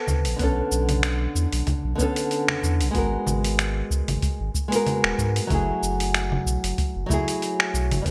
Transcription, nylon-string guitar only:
0, 0, Header, 1, 2, 480
1, 0, Start_track
1, 0, Tempo, 638298
1, 299, Time_signature, 4, 2, 24, 8
1, 6096, End_track
2, 0, Start_track
2, 0, Title_t, "Nylon-string guitar"
2, 0, Program_c, 0, 24
2, 0, Note_on_c, 0, 59, 77
2, 0, Note_on_c, 0, 60, 83
2, 0, Note_on_c, 0, 69, 102
2, 267, Note_off_c, 0, 59, 0
2, 273, Note_on_c, 0, 50, 87
2, 276, Note_off_c, 0, 60, 0
2, 285, Note_off_c, 0, 69, 0
2, 291, Note_on_c, 0, 59, 71
2, 309, Note_on_c, 0, 61, 76
2, 327, Note_on_c, 0, 69, 91
2, 1460, Note_off_c, 0, 50, 0
2, 1469, Note_off_c, 0, 59, 0
2, 1470, Note_on_c, 0, 50, 96
2, 1478, Note_off_c, 0, 61, 0
2, 1487, Note_off_c, 0, 69, 0
2, 1487, Note_on_c, 0, 59, 81
2, 1504, Note_on_c, 0, 61, 88
2, 1522, Note_on_c, 0, 69, 99
2, 2178, Note_off_c, 0, 50, 0
2, 2187, Note_off_c, 0, 59, 0
2, 2187, Note_on_c, 0, 56, 76
2, 2195, Note_off_c, 0, 61, 0
2, 2204, Note_off_c, 0, 69, 0
2, 2204, Note_on_c, 0, 59, 68
2, 2221, Note_on_c, 0, 66, 67
2, 2239, Note_on_c, 0, 70, 85
2, 3377, Note_off_c, 0, 56, 0
2, 3385, Note_off_c, 0, 59, 0
2, 3394, Note_off_c, 0, 66, 0
2, 3403, Note_off_c, 0, 70, 0
2, 3520, Note_on_c, 0, 56, 88
2, 3538, Note_on_c, 0, 59, 76
2, 3554, Note_on_c, 0, 66, 85
2, 3574, Note_on_c, 0, 70, 94
2, 4097, Note_off_c, 0, 56, 0
2, 4106, Note_off_c, 0, 59, 0
2, 4114, Note_off_c, 0, 66, 0
2, 4114, Note_on_c, 0, 54, 87
2, 4124, Note_off_c, 0, 70, 0
2, 4130, Note_on_c, 0, 57, 80
2, 4147, Note_on_c, 0, 64, 73
2, 4166, Note_on_c, 0, 68, 86
2, 5300, Note_off_c, 0, 54, 0
2, 5308, Note_off_c, 0, 57, 0
2, 5311, Note_on_c, 0, 54, 95
2, 5317, Note_off_c, 0, 64, 0
2, 5326, Note_off_c, 0, 68, 0
2, 5328, Note_on_c, 0, 57, 82
2, 5348, Note_on_c, 0, 64, 84
2, 5365, Note_on_c, 0, 68, 104
2, 6019, Note_off_c, 0, 54, 0
2, 6027, Note_off_c, 0, 57, 0
2, 6030, Note_on_c, 0, 55, 72
2, 6037, Note_off_c, 0, 64, 0
2, 6046, Note_off_c, 0, 68, 0
2, 6048, Note_on_c, 0, 59, 63
2, 6063, Note_off_c, 0, 55, 0
2, 6066, Note_on_c, 0, 60, 65
2, 6096, Note_off_c, 0, 59, 0
2, 6096, Note_off_c, 0, 60, 0
2, 6096, End_track
0, 0, End_of_file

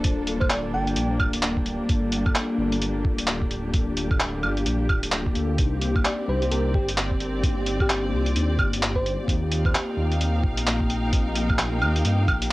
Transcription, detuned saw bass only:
0, 0, Header, 1, 2, 480
1, 0, Start_track
1, 0, Key_signature, -2, "minor"
1, 0, Tempo, 461538
1, 55, Time_signature, 4, 2, 24, 8
1, 13025, End_track
2, 0, Start_track
2, 0, Title_t, "Detuned saw bass"
2, 0, Program_c, 0, 39
2, 0, Note_on_c, 0, 26, 83
2, 768, Note_on_c, 0, 31, 93
2, 783, Note_off_c, 0, 26, 0
2, 996, Note_off_c, 0, 31, 0
2, 1005, Note_on_c, 0, 34, 97
2, 1235, Note_off_c, 0, 34, 0
2, 1247, Note_on_c, 0, 26, 99
2, 1857, Note_off_c, 0, 26, 0
2, 1971, Note_on_c, 0, 31, 93
2, 2441, Note_off_c, 0, 31, 0
2, 2685, Note_on_c, 0, 31, 92
2, 2915, Note_off_c, 0, 31, 0
2, 2929, Note_on_c, 0, 31, 86
2, 3157, Note_off_c, 0, 31, 0
2, 3170, Note_on_c, 0, 26, 84
2, 4611, Note_on_c, 0, 31, 92
2, 4627, Note_off_c, 0, 26, 0
2, 4838, Note_off_c, 0, 31, 0
2, 4852, Note_on_c, 0, 34, 99
2, 5078, Note_off_c, 0, 34, 0
2, 5091, Note_on_c, 0, 26, 100
2, 5564, Note_off_c, 0, 26, 0
2, 5571, Note_on_c, 0, 38, 86
2, 5797, Note_off_c, 0, 38, 0
2, 5814, Note_on_c, 0, 36, 97
2, 6282, Note_off_c, 0, 36, 0
2, 6535, Note_on_c, 0, 36, 92
2, 6759, Note_off_c, 0, 36, 0
2, 6777, Note_on_c, 0, 36, 89
2, 7001, Note_off_c, 0, 36, 0
2, 7013, Note_on_c, 0, 31, 87
2, 8456, Note_on_c, 0, 36, 92
2, 8471, Note_off_c, 0, 31, 0
2, 8680, Note_off_c, 0, 36, 0
2, 8695, Note_on_c, 0, 39, 97
2, 8919, Note_off_c, 0, 39, 0
2, 8931, Note_on_c, 0, 31, 101
2, 9539, Note_off_c, 0, 31, 0
2, 9653, Note_on_c, 0, 39, 94
2, 10122, Note_off_c, 0, 39, 0
2, 10370, Note_on_c, 0, 39, 94
2, 10597, Note_off_c, 0, 39, 0
2, 10607, Note_on_c, 0, 39, 89
2, 10836, Note_off_c, 0, 39, 0
2, 10854, Note_on_c, 0, 34, 88
2, 12292, Note_on_c, 0, 39, 95
2, 12307, Note_off_c, 0, 34, 0
2, 12518, Note_off_c, 0, 39, 0
2, 12535, Note_on_c, 0, 43, 98
2, 12759, Note_off_c, 0, 43, 0
2, 12774, Note_on_c, 0, 34, 99
2, 13025, Note_off_c, 0, 34, 0
2, 13025, End_track
0, 0, End_of_file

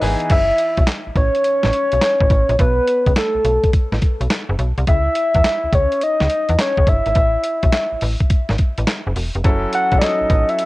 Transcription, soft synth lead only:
0, 0, Header, 1, 2, 480
1, 0, Start_track
1, 0, Tempo, 571429
1, 255, Time_signature, 4, 2, 24, 8
1, 8949, End_track
2, 0, Start_track
2, 0, Title_t, "Soft synth lead"
2, 0, Program_c, 0, 80
2, 267, Note_on_c, 0, 76, 118
2, 708, Note_off_c, 0, 76, 0
2, 982, Note_on_c, 0, 73, 123
2, 2145, Note_off_c, 0, 73, 0
2, 2187, Note_on_c, 0, 71, 106
2, 2628, Note_off_c, 0, 71, 0
2, 2673, Note_on_c, 0, 69, 85
2, 3111, Note_off_c, 0, 69, 0
2, 4104, Note_on_c, 0, 76, 119
2, 4825, Note_on_c, 0, 73, 98
2, 4838, Note_off_c, 0, 76, 0
2, 5068, Note_on_c, 0, 75, 105
2, 5080, Note_off_c, 0, 73, 0
2, 5541, Note_off_c, 0, 75, 0
2, 5551, Note_on_c, 0, 73, 93
2, 5786, Note_on_c, 0, 76, 103
2, 5798, Note_off_c, 0, 73, 0
2, 6740, Note_off_c, 0, 76, 0
2, 8186, Note_on_c, 0, 78, 107
2, 8388, Note_on_c, 0, 74, 75
2, 8400, Note_off_c, 0, 78, 0
2, 8423, Note_on_c, 0, 75, 96
2, 8435, Note_off_c, 0, 74, 0
2, 8813, Note_on_c, 0, 76, 95
2, 8826, Note_off_c, 0, 75, 0
2, 8949, Note_off_c, 0, 76, 0
2, 8949, End_track
0, 0, End_of_file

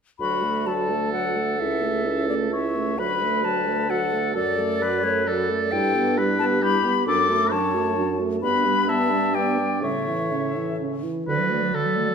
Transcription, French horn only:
0, 0, Header, 1, 2, 480
1, 0, Start_track
1, 0, Key_signature, 2, "major"
1, 0, Tempo, 463320
1, 209, Time_signature, 3, 2, 24, 8
1, 3567, Tempo, 454545
1, 9807, Tempo, 475436
1, 12630, End_track
2, 0, Start_track
2, 0, Title_t, "French horn"
2, 0, Program_c, 0, 60
2, 210, Note_on_c, 0, 54, 30
2, 450, Note_on_c, 0, 57, 33
2, 466, Note_off_c, 0, 54, 0
2, 691, Note_on_c, 0, 54, 29
2, 707, Note_off_c, 0, 57, 0
2, 932, Note_on_c, 0, 57, 30
2, 948, Note_off_c, 0, 54, 0
2, 1164, Note_off_c, 0, 57, 0
2, 1170, Note_on_c, 0, 54, 36
2, 1412, Note_on_c, 0, 57, 31
2, 1428, Note_off_c, 0, 54, 0
2, 1649, Note_off_c, 0, 57, 0
2, 1655, Note_on_c, 0, 61, 31
2, 1889, Note_on_c, 0, 57, 32
2, 1904, Note_off_c, 0, 61, 0
2, 2130, Note_on_c, 0, 61, 32
2, 2145, Note_off_c, 0, 57, 0
2, 2379, Note_on_c, 0, 57, 33
2, 2394, Note_off_c, 0, 61, 0
2, 2609, Note_off_c, 0, 57, 0
2, 2615, Note_on_c, 0, 61, 33
2, 2855, Note_on_c, 0, 57, 31
2, 2871, Note_off_c, 0, 61, 0
2, 3093, Note_off_c, 0, 57, 0
2, 3097, Note_on_c, 0, 54, 34
2, 3337, Note_on_c, 0, 57, 36
2, 3353, Note_off_c, 0, 54, 0
2, 3573, Note_on_c, 0, 54, 35
2, 3588, Note_off_c, 0, 57, 0
2, 3816, Note_on_c, 0, 57, 37
2, 3831, Note_off_c, 0, 54, 0
2, 4042, Note_off_c, 0, 57, 0
2, 4049, Note_on_c, 0, 54, 37
2, 4296, Note_on_c, 0, 57, 33
2, 4312, Note_off_c, 0, 54, 0
2, 4528, Note_off_c, 0, 57, 0
2, 4534, Note_on_c, 0, 54, 41
2, 4779, Note_on_c, 0, 57, 40
2, 4795, Note_off_c, 0, 54, 0
2, 5022, Note_on_c, 0, 54, 40
2, 5037, Note_off_c, 0, 57, 0
2, 5264, Note_on_c, 0, 57, 40
2, 5279, Note_off_c, 0, 54, 0
2, 5491, Note_off_c, 0, 57, 0
2, 5497, Note_on_c, 0, 54, 41
2, 5744, Note_on_c, 0, 57, 42
2, 5760, Note_off_c, 0, 54, 0
2, 5975, Note_off_c, 0, 57, 0
2, 5981, Note_on_c, 0, 55, 43
2, 6220, Note_on_c, 0, 59, 42
2, 6236, Note_off_c, 0, 55, 0
2, 6459, Note_on_c, 0, 55, 43
2, 6475, Note_off_c, 0, 59, 0
2, 6700, Note_on_c, 0, 59, 39
2, 6716, Note_off_c, 0, 55, 0
2, 6922, Note_off_c, 0, 59, 0
2, 6928, Note_on_c, 0, 55, 49
2, 7162, Note_on_c, 0, 59, 41
2, 7178, Note_off_c, 0, 55, 0
2, 7394, Note_off_c, 0, 59, 0
2, 7400, Note_on_c, 0, 54, 44
2, 7636, Note_on_c, 0, 57, 45
2, 7652, Note_off_c, 0, 54, 0
2, 7875, Note_on_c, 0, 54, 41
2, 7891, Note_off_c, 0, 57, 0
2, 8116, Note_on_c, 0, 57, 42
2, 8132, Note_off_c, 0, 54, 0
2, 8350, Note_off_c, 0, 57, 0
2, 8357, Note_on_c, 0, 54, 45
2, 8585, Note_on_c, 0, 57, 41
2, 8600, Note_off_c, 0, 54, 0
2, 8819, Note_off_c, 0, 57, 0
2, 8825, Note_on_c, 0, 59, 40
2, 9068, Note_on_c, 0, 55, 42
2, 9084, Note_off_c, 0, 59, 0
2, 9311, Note_on_c, 0, 59, 41
2, 9327, Note_off_c, 0, 55, 0
2, 9550, Note_on_c, 0, 55, 37
2, 9566, Note_off_c, 0, 59, 0
2, 9797, Note_off_c, 0, 55, 0
2, 9803, Note_on_c, 0, 59, 38
2, 10042, Note_on_c, 0, 55, 32
2, 10058, Note_off_c, 0, 59, 0
2, 10276, Note_off_c, 0, 55, 0
2, 10282, Note_on_c, 0, 49, 32
2, 10533, Note_on_c, 0, 52, 35
2, 10548, Note_off_c, 0, 49, 0
2, 10782, Note_on_c, 0, 49, 33
2, 10797, Note_off_c, 0, 52, 0
2, 11030, Note_on_c, 0, 52, 31
2, 11046, Note_off_c, 0, 49, 0
2, 11257, Note_off_c, 0, 52, 0
2, 11263, Note_on_c, 0, 49, 30
2, 11502, Note_on_c, 0, 52, 28
2, 11518, Note_off_c, 0, 49, 0
2, 11741, Note_off_c, 0, 52, 0
2, 11747, Note_on_c, 0, 54, 40
2, 12630, Note_off_c, 0, 54, 0
2, 12630, End_track
0, 0, End_of_file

